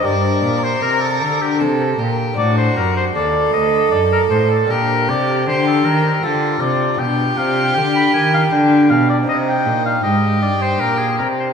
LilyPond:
<<
  \new Staff \with { instrumentName = "Oboe" } { \time 3/4 \key g \minor \tempo 4 = 78 d''8. c''16 bes'16 a'8 g'16 r4 | d''16 c''16 bes'16 c''16 d''8 ees''8 d''16 bes'16 c''16 a'16 | bes'8 d''8 c''16 a'16 bes'8 a'8 d''8 | \key c \minor g''8 f''8 g''16 b''16 aes''16 f''16 g''8 f''16 d''16 |
ees''16 g''8 f''16 ees''8 d''16 c''16 bes'16 aes'16 bes'16 c''16 | }
  \new Staff \with { instrumentName = "Violin" } { \time 3/4 \key g \minor bes'2 a'8 g'8 | fis'4 a'2 | g'4 g'4 f'4 | \key c \minor g'2 d'4 |
ees'4 g'2 | }
  \new Staff \with { instrumentName = "Lute" } { \time 3/4 \key g \minor <bes d' g'>2. | <c' d' fis'>2. | <bes d' g'>2. | \key c \minor <d' f' g'>2. |
<c' ees' g'>2. | }
  \new Staff \with { instrumentName = "Lute" } { \clef bass \time 3/4 \key g \minor g,8 bes,8 c8 d8 c8 bes,8 | a,8 fis,8 ees,8 d,8 fis,8 a,8 | bes,8 c8 d8 ees8 d8 c8 | \key c \minor b,8 c8 d8 ees8 d8 b,8 |
c8 bes,8 aes,8 g,8 bes,8 c8 | }
  \new Staff \with { instrumentName = "Cello" } { \clef bass \time 3/4 \key g \minor g,8 bes,8 c8 d8 c8 bes,8 | a,8 fis,8 ees,8 d,8 fis,8 a,8 | bes,8 c8 d8 ees8 d8 c8 | \key c \minor b,8 c8 d8 ees8 d8 b,8 |
c8 bes,8 aes,8 g,8 bes,8 c8 | }
>>